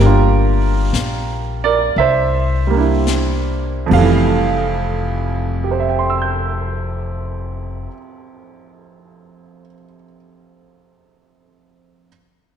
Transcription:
Already playing: G3 G4 A#4
0.00 G1 A#3 D4
0.06 F4
0.93 A#1, snare, hi-hat pedal
1.64 A#4 D5
1.95 C2 E5, brush sweep
2.00 C5
2.67 G3 A#3
2.74 D4 E4
3.07 snare, hi-hat pedal
3.86 F2 F3
3.91 F1 G3 A3 F5, kick, ride
3.99 E3
5.64 G4
5.71 C5
5.80 E5
5.89 G5
5.99 C6
6.10 E6
6.22 G6

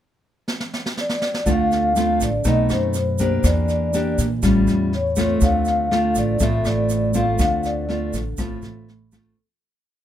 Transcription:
0.48 snare
0.60 snare
0.73 snare
0.86 snare
0.97 D5, snare
1.09 snare
1.22 snare
1.34 snare
1.46 D2 D3 A3 C4 F4, kick, snare, shaker
1.51 F5
1.71 F5, snare, shaker
1.96 A3 C4 F4, cross-stick, snare, shaker
2.20 A1 D5, kick, snare, shaker
2.44 B1 B2 A3 C4 D#4 D#5, kick, snare, shaker
2.69 F#2 C5, cross-stick, snare, shaker
2.94 snare, shaker
3.18 A#3 D4 G4 C5, kick, snare, shaker
3.44 E2 E3 D5, kick, cross-stick, snare, shaker
3.68 D5, snare, shaker
3.93 A#3 D4 G4, snare, shaker
4.18 A#2, kick, snare, shaker
4.42 A1 A2 G3 C#4 F4, kick, cross-stick, snare, shaker
4.67 E2, snare, shaker
4.93 C#5, snare
5.16 A3 C4 F4, kick, cross-stick, snare, shaker
5.41 D2 D3 F5, kick, snare, shaker
5.65 F5, snare, shaker
5.91 A3 C4 F4, cross-stick, snare
6.15 A1 D5, kick, snare, shaker
6.39 A1 A2 A3 C4 F4 E5, kick, snare, shaker
6.65 A1 D5, cross-stick, snare, shaker
6.89 snare, shaker
7.14 A3 C4 F4 F5, kick, snare, shaker
7.39 D2 D3 F5, kick, cross-stick, snare, shaker
7.63 D5, snare, shaker
7.89 A3 C4 F4, snare
8.13 A1, kick, snare, shaker
8.37 A1 A2 A3 C4 F4, kick, cross-stick, snare, shaker
8.62 A1, snare, shaker
8.88 snare
9.12 A3 C4 F4, kick, cross-stick, snare, shaker

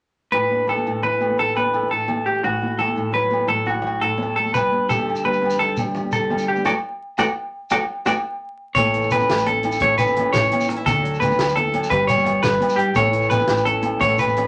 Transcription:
0.32 A2 B4, muted conga, low conga, low agogo
0.51 D4, high conga
0.67 A4 B4, low conga, low agogo
0.77 muted conga, high conga, low conga
0.86 A2, low agogo
1.03 E3 B4, high conga, low conga
1.21 A3, muted conga, low agogo
1.30 high conga, low conga
1.38 A2 A4, low conga
1.56 D4 B4, high conga, low agogo
1.66 muted conga, low conga
1.74 A4, low agogo
1.83 high conga
1.91 A2 A4
2.08 E3, muted conga, high conga, low conga, low agogo
2.26 A3 G4
2.43 A2 F#4, muted conga, low conga, low agogo
2.62 E4, high conga
2.78 F#4 A4, low conga, low agogo
2.88 muted conga, high conga, low conga
2.96 A2, low agogo
3.12 F#3 B4, high conga, low conga
3.31 A3, muted conga, low agogo
3.40 high conga, low conga
3.47 A2 A4, low conga
3.66 E4 F#4, high conga, low agogo
3.74 muted conga, low conga
3.82 F#4, low conga
3.87 low agogo
4.01 A2 A4
4.17 F#3, muted conga, high conga, low conga
4.22 low agogo
4.36 A3 A4
4.45 high conga
4.54 G2 B4, muted conga, low conga, low agogo, shekere
4.72 D4, high conga
4.89 G4 A4, low conga, low agogo, shekere
4.98 muted conga, high conga, low conga
5.06 D3, low agogo
5.16 shekere
5.24 G3 B4, high conga, low conga
5.33 shekere
5.42 B3, muted conga, low agogo
5.50 high conga, low conga, shekere
5.59 G2 A4, low conga
5.77 D4, high conga, low agogo, shekere
5.86 muted conga, low conga
5.95 G4, low conga, low agogo, shekere
6.04 high conga
6.12 D3 A4, shekere
6.30 G3, muted conga, high conga, low conga, low agogo
6.38 shekere
6.48 B3 G4
6.56 high conga, shekere
6.65 E3 F#3 A3 F#4 A4 D5, muted conga, low agogo, shekere
7.18 E3 F#3 A3 F#4 A4 D5, muted conga, low agogo, shekere
7.70 E3 F#3 A3 F#4 A4 D5, muted conga, low agogo, shekere
8.05 E3 F#3 A3 F#4 A4 D5, muted conga, low agogo, shekere
8.75 A1 A2 A4 C#5, kick, closed hi-hat, muted conga, high conga, low conga, low agogo, shekere
8.93 E3, closed hi-hat
9.02 shekere
9.10 A1 C#4 B4, closed hi-hat, high conga, low agogo, shekere
9.20 muted conga, shekere
9.28 A1 A2, snare, closed hi-hat, low agogo
9.38 low conga, shekere
9.46 C#4 A4, closed hi-hat, high conga, low conga
9.63 E4, closed hi-hat, muted conga, low conga, low agogo
9.72 shekere
9.80 A1 A2 A4 C#5, kick, closed hi-hat, high conga, low conga
9.98 E3 B4, closed hi-hat, low conga, low agogo, shekere
10.07 muted conga, shekere
10.16 C#4, closed hi-hat, high conga, low conga, low agogo
10.33 A1 A2 C#5, snare, closed hi-hat, low conga, shekere
10.43 low conga, shekere
10.52 C#4, closed hi-hat, muted conga, high conga, low conga, low agogo
10.61 shekere
10.69 C#4, muted clean electric guitar stroke, closed hi-hat, shekere
10.76 E4
10.85 D2 D3 F#4 A4, kick, closed hi-hat, muted conga, high conga, low conga, low agogo, shekere
11.02 F#3, closed hi-hat
11.14 shekere
11.20 D2 A3 B4, closed hi-hat, high conga, low conga, low agogo, shekere
11.31 muted conga, shekere
11.37 D2 D3, snare, closed hi-hat
11.41 low agogo
11.48 low conga, shekere
11.56 E3 A4, closed hi-hat, high conga, low conga
11.73 F#3, closed hi-hat, muted conga, low conga, low agogo
11.84 shekere
11.90 G1 G2 G4 B4, kick, closed hi-hat, high conga, low conga
12.00 low conga
12.07 G3 C#5, closed hi-hat, low conga, low agogo, shekere
12.18 muted conga, shekere
12.24 B3, closed hi-hat, high conga, low conga, low agogo
12.43 G1 B4, snare, closed hi-hat, shekere
12.51 shekere
12.60 F#2, closed hi-hat, muted conga, high conga, low conga, low agogo
12.69 shekere
12.76 G2 G4, closed hi-hat, shekere
12.94 A1 A2 A4 C#5, kick, closed hi-hat, muted conga, high conga, low conga, low agogo, shekere
13.11 E3, closed hi-hat
13.22 shekere
13.29 A1 C#4 B4, closed hi-hat, high conga, low conga, low agogo, shekere
13.40 muted conga, shekere
13.46 A1 A2, snare, closed hi-hat
13.50 low agogo
13.57 low conga, shekere
13.64 C#4 A4, closed hi-hat, high conga, low conga
13.82 E4, closed hi-hat, muted conga, low conga, low agogo
14.00 A1 A2 F#4 C#5, kick, closed hi-hat, high conga, low conga
14.09 A4, low conga
14.17 E3 B4, closed hi-hat, low conga, low agogo, shekere
14.28 muted conga, shekere
14.37 C#4, closed hi-hat, high conga, low conga, low agogo

